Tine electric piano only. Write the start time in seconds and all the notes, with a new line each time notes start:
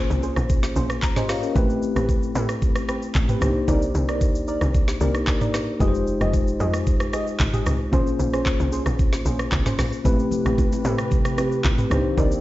Already playing: A#3 C#4 F4 G#4 C5
1.03 A#5
1.16 G4 D#5
1.29 F4 C#5 F5
1.43 C#4 A#4
1.55 A3 C4 E4 G4 B4
3.40 A#3 D4 D#4 G4 C5
5.00 A#3 D4 D#4 G4 A#4
5.79 G#3 D#4 F4 G4 B4
5.88 C5
7.92 A#3 C#4 F4 G#4 C5
10.04 A3 C4 E4 G4 B4
11.90 A#3 D4 D#4 G4 C5